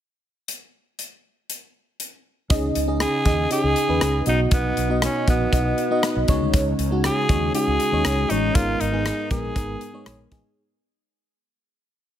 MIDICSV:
0, 0, Header, 1, 5, 480
1, 0, Start_track
1, 0, Tempo, 504202
1, 463, Time_signature, 4, 2, 24, 8
1, 11608, End_track
2, 0, Start_track
2, 0, Title_t, "Tenor saxophone"
2, 0, Program_c, 0, 66
2, 2870, Note_on_c, 0, 68, 99
2, 3313, Note_off_c, 0, 68, 0
2, 3354, Note_on_c, 0, 68, 101
2, 4030, Note_off_c, 0, 68, 0
2, 4084, Note_on_c, 0, 63, 86
2, 4187, Note_off_c, 0, 63, 0
2, 4320, Note_on_c, 0, 59, 86
2, 4758, Note_off_c, 0, 59, 0
2, 4809, Note_on_c, 0, 61, 80
2, 5020, Note_off_c, 0, 61, 0
2, 5043, Note_on_c, 0, 59, 77
2, 5955, Note_off_c, 0, 59, 0
2, 6718, Note_on_c, 0, 68, 102
2, 7157, Note_off_c, 0, 68, 0
2, 7188, Note_on_c, 0, 68, 97
2, 7901, Note_on_c, 0, 63, 87
2, 7915, Note_off_c, 0, 68, 0
2, 8140, Note_on_c, 0, 65, 98
2, 8154, Note_off_c, 0, 63, 0
2, 8385, Note_on_c, 0, 63, 92
2, 8399, Note_off_c, 0, 65, 0
2, 8864, Note_off_c, 0, 63, 0
2, 8868, Note_on_c, 0, 68, 84
2, 9787, Note_off_c, 0, 68, 0
2, 11608, End_track
3, 0, Start_track
3, 0, Title_t, "FM electric piano"
3, 0, Program_c, 1, 5
3, 2377, Note_on_c, 1, 61, 75
3, 2380, Note_on_c, 1, 63, 70
3, 2383, Note_on_c, 1, 49, 66
3, 2385, Note_on_c, 1, 68, 70
3, 2387, Note_on_c, 1, 75, 85
3, 2538, Control_c, 1, 64, 127
3, 2652, Note_off_c, 1, 61, 0
3, 2653, Note_off_c, 1, 63, 0
3, 2656, Note_off_c, 1, 68, 0
3, 2657, Note_off_c, 1, 75, 0
3, 2735, Note_on_c, 1, 61, 70
3, 2740, Note_on_c, 1, 63, 63
3, 2741, Note_on_c, 1, 68, 59
3, 2747, Note_on_c, 1, 75, 73
3, 3011, Note_off_c, 1, 61, 0
3, 3013, Note_off_c, 1, 63, 0
3, 3014, Note_off_c, 1, 68, 0
3, 3017, Note_off_c, 1, 75, 0
3, 3065, Note_off_c, 1, 49, 0
3, 3096, Note_on_c, 1, 61, 64
3, 3101, Note_on_c, 1, 63, 60
3, 3106, Note_on_c, 1, 68, 63
3, 3108, Note_on_c, 1, 75, 69
3, 3280, Note_off_c, 1, 61, 0
3, 3283, Note_off_c, 1, 63, 0
3, 3286, Note_off_c, 1, 68, 0
3, 3286, Note_off_c, 1, 75, 0
3, 3336, Note_on_c, 1, 61, 68
3, 3340, Note_on_c, 1, 63, 62
3, 3346, Note_on_c, 1, 68, 63
3, 3349, Note_on_c, 1, 75, 72
3, 3611, Note_off_c, 1, 61, 0
3, 3613, Note_off_c, 1, 63, 0
3, 3616, Note_off_c, 1, 68, 0
3, 3618, Note_off_c, 1, 75, 0
3, 3695, Note_on_c, 1, 61, 66
3, 3700, Note_on_c, 1, 63, 55
3, 3704, Note_on_c, 1, 68, 59
3, 3708, Note_on_c, 1, 71, 69
3, 3971, Note_off_c, 1, 61, 0
3, 3973, Note_off_c, 1, 63, 0
3, 3975, Note_off_c, 1, 68, 0
3, 3977, Note_off_c, 1, 71, 0
3, 4058, Note_on_c, 1, 59, 75
3, 4062, Note_on_c, 1, 47, 60
3, 4062, Note_on_c, 1, 63, 70
3, 4065, Note_on_c, 1, 66, 68
3, 4068, Note_on_c, 1, 75, 78
3, 4075, Control_c, 1, 64, 0
3, 4245, Control_c, 1, 64, 127
3, 4540, Note_off_c, 1, 59, 0
3, 4542, Note_off_c, 1, 63, 0
3, 4544, Note_off_c, 1, 66, 0
3, 4545, Note_off_c, 1, 75, 0
3, 4659, Note_on_c, 1, 59, 65
3, 4661, Note_on_c, 1, 63, 63
3, 4667, Note_on_c, 1, 66, 61
3, 4671, Note_on_c, 1, 75, 79
3, 4745, Note_off_c, 1, 47, 0
3, 4933, Note_off_c, 1, 59, 0
3, 4934, Note_off_c, 1, 63, 0
3, 4937, Note_off_c, 1, 66, 0
3, 4939, Note_off_c, 1, 75, 0
3, 5021, Note_on_c, 1, 59, 67
3, 5026, Note_on_c, 1, 63, 65
3, 5030, Note_on_c, 1, 66, 63
3, 5035, Note_on_c, 1, 75, 74
3, 5203, Note_off_c, 1, 59, 0
3, 5206, Note_off_c, 1, 63, 0
3, 5208, Note_off_c, 1, 66, 0
3, 5210, Note_off_c, 1, 75, 0
3, 5259, Note_on_c, 1, 59, 68
3, 5264, Note_on_c, 1, 63, 67
3, 5268, Note_on_c, 1, 66, 64
3, 5272, Note_on_c, 1, 75, 76
3, 5533, Note_off_c, 1, 59, 0
3, 5535, Note_off_c, 1, 63, 0
3, 5538, Note_off_c, 1, 66, 0
3, 5539, Note_off_c, 1, 75, 0
3, 5623, Note_on_c, 1, 59, 75
3, 5626, Note_on_c, 1, 63, 71
3, 5629, Note_on_c, 1, 66, 70
3, 5632, Note_on_c, 1, 75, 86
3, 5895, Note_off_c, 1, 59, 0
3, 5896, Note_off_c, 1, 63, 0
3, 5898, Note_off_c, 1, 66, 0
3, 5899, Note_off_c, 1, 75, 0
3, 5982, Note_on_c, 1, 56, 89
3, 5983, Note_on_c, 1, 61, 84
3, 5986, Note_on_c, 1, 49, 76
3, 5988, Note_on_c, 1, 63, 85
3, 5991, Note_on_c, 1, 73, 103
3, 5996, Control_c, 1, 64, 0
3, 6137, Control_c, 1, 64, 127
3, 6462, Note_off_c, 1, 56, 0
3, 6463, Note_off_c, 1, 61, 0
3, 6466, Note_off_c, 1, 63, 0
3, 6467, Note_off_c, 1, 73, 0
3, 6577, Note_on_c, 1, 56, 70
3, 6583, Note_on_c, 1, 61, 63
3, 6585, Note_on_c, 1, 63, 61
3, 6590, Note_on_c, 1, 66, 76
3, 6667, Note_off_c, 1, 49, 0
3, 6852, Note_off_c, 1, 56, 0
3, 6855, Note_off_c, 1, 61, 0
3, 6856, Note_off_c, 1, 63, 0
3, 6858, Note_off_c, 1, 66, 0
3, 6936, Note_on_c, 1, 56, 65
3, 6941, Note_on_c, 1, 61, 62
3, 6945, Note_on_c, 1, 63, 63
3, 6950, Note_on_c, 1, 73, 74
3, 7121, Note_off_c, 1, 56, 0
3, 7123, Note_off_c, 1, 61, 0
3, 7125, Note_off_c, 1, 63, 0
3, 7128, Note_off_c, 1, 73, 0
3, 7174, Note_on_c, 1, 56, 71
3, 7182, Note_on_c, 1, 61, 66
3, 7184, Note_on_c, 1, 63, 67
3, 7186, Note_on_c, 1, 66, 73
3, 7451, Note_off_c, 1, 56, 0
3, 7454, Note_off_c, 1, 61, 0
3, 7455, Note_off_c, 1, 63, 0
3, 7456, Note_off_c, 1, 66, 0
3, 7537, Note_on_c, 1, 56, 66
3, 7544, Note_on_c, 1, 61, 63
3, 7546, Note_on_c, 1, 63, 63
3, 7553, Note_on_c, 1, 73, 76
3, 7812, Note_off_c, 1, 56, 0
3, 7815, Note_off_c, 1, 61, 0
3, 7816, Note_off_c, 1, 63, 0
3, 7820, Note_off_c, 1, 73, 0
3, 7902, Note_on_c, 1, 56, 77
3, 7907, Note_on_c, 1, 61, 69
3, 7911, Note_on_c, 1, 63, 70
3, 7914, Note_on_c, 1, 73, 81
3, 8084, Note_off_c, 1, 56, 0
3, 8086, Note_off_c, 1, 61, 0
3, 8088, Note_off_c, 1, 63, 0
3, 8090, Note_off_c, 1, 73, 0
3, 8139, Note_on_c, 1, 56, 69
3, 8144, Note_on_c, 1, 59, 61
3, 8146, Note_on_c, 1, 44, 62
3, 8146, Note_on_c, 1, 63, 62
3, 8149, Note_on_c, 1, 70, 79
3, 8155, Control_c, 1, 64, 0
3, 8325, Control_c, 1, 64, 127
3, 8413, Note_off_c, 1, 56, 0
3, 8415, Note_off_c, 1, 59, 0
3, 8416, Note_off_c, 1, 63, 0
3, 8418, Note_off_c, 1, 70, 0
3, 8492, Note_on_c, 1, 56, 70
3, 8495, Note_on_c, 1, 59, 66
3, 8502, Note_on_c, 1, 63, 66
3, 8504, Note_on_c, 1, 68, 76
3, 8770, Note_off_c, 1, 56, 0
3, 8771, Note_off_c, 1, 59, 0
3, 8774, Note_off_c, 1, 63, 0
3, 8775, Note_off_c, 1, 68, 0
3, 8826, Note_off_c, 1, 44, 0
3, 8855, Note_on_c, 1, 56, 69
3, 8859, Note_on_c, 1, 59, 64
3, 8863, Note_on_c, 1, 63, 62
3, 8866, Note_on_c, 1, 70, 71
3, 9040, Note_off_c, 1, 56, 0
3, 9042, Note_off_c, 1, 59, 0
3, 9044, Note_off_c, 1, 63, 0
3, 9046, Note_off_c, 1, 70, 0
3, 9095, Note_on_c, 1, 56, 67
3, 9098, Note_on_c, 1, 59, 63
3, 9101, Note_on_c, 1, 63, 64
3, 9105, Note_on_c, 1, 70, 73
3, 9371, Note_off_c, 1, 56, 0
3, 9372, Note_off_c, 1, 59, 0
3, 9374, Note_off_c, 1, 63, 0
3, 9376, Note_off_c, 1, 70, 0
3, 9455, Note_on_c, 1, 56, 77
3, 9459, Note_on_c, 1, 59, 68
3, 9461, Note_on_c, 1, 63, 66
3, 9468, Note_on_c, 1, 73, 86
3, 9731, Note_off_c, 1, 56, 0
3, 9733, Note_off_c, 1, 59, 0
3, 9734, Note_off_c, 1, 63, 0
3, 9737, Note_off_c, 1, 73, 0
3, 9814, Note_on_c, 1, 56, 79
3, 9818, Note_on_c, 1, 59, 73
3, 9822, Note_on_c, 1, 63, 76
3, 9826, Note_on_c, 1, 68, 92
3, 10000, Note_off_c, 1, 56, 0
3, 10002, Note_off_c, 1, 59, 0
3, 10004, Note_off_c, 1, 63, 0
3, 10006, Note_off_c, 1, 68, 0
3, 10075, Control_c, 1, 64, 0
3, 11608, End_track
4, 0, Start_track
4, 0, Title_t, "Fretless electric bass"
4, 0, Program_c, 2, 35
4, 2383, Note_on_c, 2, 37, 87
4, 2563, Note_off_c, 2, 37, 0
4, 2623, Note_on_c, 2, 37, 90
4, 2893, Note_off_c, 2, 37, 0
4, 3100, Note_on_c, 2, 39, 85
4, 3281, Note_off_c, 2, 39, 0
4, 3461, Note_on_c, 2, 37, 86
4, 3551, Note_off_c, 2, 37, 0
4, 3701, Note_on_c, 2, 39, 77
4, 3792, Note_off_c, 2, 39, 0
4, 3819, Note_on_c, 2, 37, 83
4, 4000, Note_off_c, 2, 37, 0
4, 4061, Note_on_c, 2, 35, 90
4, 4242, Note_off_c, 2, 35, 0
4, 4298, Note_on_c, 2, 35, 90
4, 4480, Note_off_c, 2, 35, 0
4, 4543, Note_on_c, 2, 35, 86
4, 4813, Note_off_c, 2, 35, 0
4, 5022, Note_on_c, 2, 34, 84
4, 5202, Note_off_c, 2, 34, 0
4, 5260, Note_on_c, 2, 35, 86
4, 5441, Note_off_c, 2, 35, 0
4, 5867, Note_on_c, 2, 35, 86
4, 5955, Note_off_c, 2, 35, 0
4, 5982, Note_on_c, 2, 37, 88
4, 6073, Note_off_c, 2, 37, 0
4, 6103, Note_on_c, 2, 38, 84
4, 6193, Note_off_c, 2, 38, 0
4, 6222, Note_on_c, 2, 37, 94
4, 6402, Note_off_c, 2, 37, 0
4, 6462, Note_on_c, 2, 37, 99
4, 6733, Note_off_c, 2, 37, 0
4, 6944, Note_on_c, 2, 39, 77
4, 7124, Note_off_c, 2, 39, 0
4, 7305, Note_on_c, 2, 37, 88
4, 7394, Note_off_c, 2, 37, 0
4, 7543, Note_on_c, 2, 39, 79
4, 7633, Note_off_c, 2, 39, 0
4, 7662, Note_on_c, 2, 37, 86
4, 7842, Note_off_c, 2, 37, 0
4, 7905, Note_on_c, 2, 33, 86
4, 8084, Note_off_c, 2, 33, 0
4, 8142, Note_on_c, 2, 32, 98
4, 8322, Note_off_c, 2, 32, 0
4, 8386, Note_on_c, 2, 32, 95
4, 8655, Note_off_c, 2, 32, 0
4, 8862, Note_on_c, 2, 34, 78
4, 9042, Note_off_c, 2, 34, 0
4, 9099, Note_on_c, 2, 32, 96
4, 9280, Note_off_c, 2, 32, 0
4, 9579, Note_on_c, 2, 34, 83
4, 9761, Note_off_c, 2, 34, 0
4, 9820, Note_on_c, 2, 33, 81
4, 9911, Note_off_c, 2, 33, 0
4, 11608, End_track
5, 0, Start_track
5, 0, Title_t, "Drums"
5, 460, Note_on_c, 9, 42, 55
5, 555, Note_off_c, 9, 42, 0
5, 941, Note_on_c, 9, 42, 53
5, 1036, Note_off_c, 9, 42, 0
5, 1424, Note_on_c, 9, 42, 52
5, 1520, Note_off_c, 9, 42, 0
5, 1903, Note_on_c, 9, 42, 54
5, 1998, Note_off_c, 9, 42, 0
5, 2382, Note_on_c, 9, 42, 88
5, 2383, Note_on_c, 9, 36, 108
5, 2477, Note_off_c, 9, 42, 0
5, 2478, Note_off_c, 9, 36, 0
5, 2622, Note_on_c, 9, 42, 81
5, 2717, Note_off_c, 9, 42, 0
5, 2859, Note_on_c, 9, 37, 109
5, 2859, Note_on_c, 9, 42, 79
5, 2954, Note_off_c, 9, 37, 0
5, 2954, Note_off_c, 9, 42, 0
5, 3097, Note_on_c, 9, 42, 62
5, 3100, Note_on_c, 9, 36, 78
5, 3193, Note_off_c, 9, 42, 0
5, 3195, Note_off_c, 9, 36, 0
5, 3339, Note_on_c, 9, 42, 91
5, 3434, Note_off_c, 9, 42, 0
5, 3579, Note_on_c, 9, 42, 70
5, 3674, Note_off_c, 9, 42, 0
5, 3819, Note_on_c, 9, 42, 79
5, 3820, Note_on_c, 9, 37, 101
5, 3914, Note_off_c, 9, 42, 0
5, 3915, Note_off_c, 9, 37, 0
5, 4054, Note_on_c, 9, 42, 69
5, 4149, Note_off_c, 9, 42, 0
5, 4296, Note_on_c, 9, 42, 88
5, 4299, Note_on_c, 9, 36, 104
5, 4391, Note_off_c, 9, 42, 0
5, 4394, Note_off_c, 9, 36, 0
5, 4541, Note_on_c, 9, 42, 76
5, 4636, Note_off_c, 9, 42, 0
5, 4780, Note_on_c, 9, 37, 103
5, 4780, Note_on_c, 9, 42, 85
5, 4875, Note_off_c, 9, 37, 0
5, 4876, Note_off_c, 9, 42, 0
5, 5023, Note_on_c, 9, 36, 80
5, 5024, Note_on_c, 9, 42, 64
5, 5118, Note_off_c, 9, 36, 0
5, 5119, Note_off_c, 9, 42, 0
5, 5261, Note_on_c, 9, 36, 81
5, 5263, Note_on_c, 9, 42, 92
5, 5356, Note_off_c, 9, 36, 0
5, 5359, Note_off_c, 9, 42, 0
5, 5501, Note_on_c, 9, 42, 71
5, 5597, Note_off_c, 9, 42, 0
5, 5741, Note_on_c, 9, 37, 103
5, 5741, Note_on_c, 9, 42, 80
5, 5836, Note_off_c, 9, 37, 0
5, 5836, Note_off_c, 9, 42, 0
5, 5978, Note_on_c, 9, 42, 68
5, 5982, Note_on_c, 9, 36, 90
5, 6073, Note_off_c, 9, 42, 0
5, 6078, Note_off_c, 9, 36, 0
5, 6221, Note_on_c, 9, 42, 89
5, 6223, Note_on_c, 9, 36, 103
5, 6316, Note_off_c, 9, 42, 0
5, 6318, Note_off_c, 9, 36, 0
5, 6463, Note_on_c, 9, 42, 80
5, 6558, Note_off_c, 9, 42, 0
5, 6702, Note_on_c, 9, 37, 105
5, 6702, Note_on_c, 9, 42, 82
5, 6797, Note_off_c, 9, 37, 0
5, 6798, Note_off_c, 9, 42, 0
5, 6942, Note_on_c, 9, 36, 81
5, 6943, Note_on_c, 9, 42, 62
5, 7037, Note_off_c, 9, 36, 0
5, 7038, Note_off_c, 9, 42, 0
5, 7183, Note_on_c, 9, 42, 93
5, 7279, Note_off_c, 9, 42, 0
5, 7424, Note_on_c, 9, 42, 71
5, 7519, Note_off_c, 9, 42, 0
5, 7660, Note_on_c, 9, 42, 86
5, 7661, Note_on_c, 9, 37, 105
5, 7756, Note_off_c, 9, 37, 0
5, 7756, Note_off_c, 9, 42, 0
5, 7900, Note_on_c, 9, 42, 69
5, 7996, Note_off_c, 9, 42, 0
5, 8141, Note_on_c, 9, 36, 108
5, 8141, Note_on_c, 9, 42, 91
5, 8236, Note_off_c, 9, 36, 0
5, 8237, Note_off_c, 9, 42, 0
5, 8383, Note_on_c, 9, 42, 80
5, 8479, Note_off_c, 9, 42, 0
5, 8622, Note_on_c, 9, 37, 102
5, 8622, Note_on_c, 9, 42, 82
5, 8717, Note_off_c, 9, 37, 0
5, 8717, Note_off_c, 9, 42, 0
5, 8859, Note_on_c, 9, 42, 61
5, 8861, Note_on_c, 9, 36, 79
5, 8954, Note_off_c, 9, 42, 0
5, 8956, Note_off_c, 9, 36, 0
5, 9099, Note_on_c, 9, 36, 81
5, 9101, Note_on_c, 9, 42, 88
5, 9194, Note_off_c, 9, 36, 0
5, 9196, Note_off_c, 9, 42, 0
5, 9339, Note_on_c, 9, 42, 72
5, 9434, Note_off_c, 9, 42, 0
5, 9578, Note_on_c, 9, 42, 85
5, 9579, Note_on_c, 9, 37, 105
5, 9674, Note_off_c, 9, 37, 0
5, 9674, Note_off_c, 9, 42, 0
5, 9820, Note_on_c, 9, 42, 67
5, 9822, Note_on_c, 9, 36, 85
5, 9916, Note_off_c, 9, 42, 0
5, 9917, Note_off_c, 9, 36, 0
5, 11608, End_track
0, 0, End_of_file